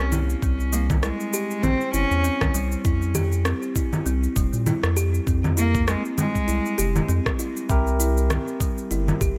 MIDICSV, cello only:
0, 0, Header, 1, 2, 480
1, 0, Start_track
1, 0, Tempo, 606061
1, 335, Time_signature, 4, 2, 24, 8
1, 7430, End_track
2, 0, Start_track
2, 0, Title_t, "Cello"
2, 0, Program_c, 0, 42
2, 0, Note_on_c, 0, 61, 107
2, 93, Note_off_c, 0, 61, 0
2, 576, Note_on_c, 0, 58, 77
2, 683, Note_off_c, 0, 58, 0
2, 811, Note_on_c, 0, 56, 86
2, 1290, Note_on_c, 0, 60, 105
2, 1302, Note_off_c, 0, 56, 0
2, 1525, Note_off_c, 0, 60, 0
2, 1530, Note_on_c, 0, 61, 103
2, 1981, Note_off_c, 0, 61, 0
2, 4418, Note_on_c, 0, 58, 98
2, 4640, Note_off_c, 0, 58, 0
2, 4656, Note_on_c, 0, 56, 86
2, 4764, Note_off_c, 0, 56, 0
2, 4898, Note_on_c, 0, 56, 88
2, 5585, Note_off_c, 0, 56, 0
2, 7430, End_track
0, 0, End_of_file